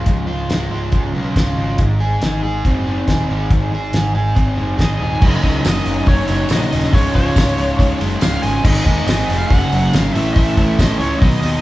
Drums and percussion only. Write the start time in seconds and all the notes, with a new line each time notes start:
0.06 kick, closed hi-hat
0.50 snare, closed hi-hat
0.92 kick, closed hi-hat
1.36 kick, snare, closed hi-hat
1.78 kick, closed hi-hat
2.22 snare, closed hi-hat
2.65 kick, closed hi-hat
3.08 kick, snare, closed hi-hat
3.51 kick, closed hi-hat
3.93 snare, closed hi-hat
4.36 kick, closed hi-hat
4.79 kick, snare, closed hi-hat
5.22 kick, crash
5.43 kick, open hi-hat
5.65 snare, open hi-hat, tambourine
5.86 open hi-hat
6.07 kick, open hi-hat
6.28 open hi-hat
6.49 snare, open hi-hat, tambourine
6.72 open hi-hat
6.84 snare
6.93 kick, open hi-hat
7.15 kick, open hi-hat
7.36 kick, snare, open hi-hat, tambourine
7.58 open hi-hat
7.79 kick, open hi-hat
8.01 open hi-hat
8.21 snare, open hi-hat, tambourine
8.43 open hi-hat
8.65 kick, crash
8.86 kick, open hi-hat
9.08 snare, open hi-hat, tambourine
9.30 open hi-hat
9.50 kick, open hi-hat
9.72 open hi-hat
9.93 snare, open hi-hat, tambourine
10.16 open hi-hat
10.36 kick, open hi-hat
10.57 kick, open hi-hat
10.79 kick, snare, open hi-hat, tambourine
11.01 open hi-hat
11.22 kick, open hi-hat
11.43 open hi-hat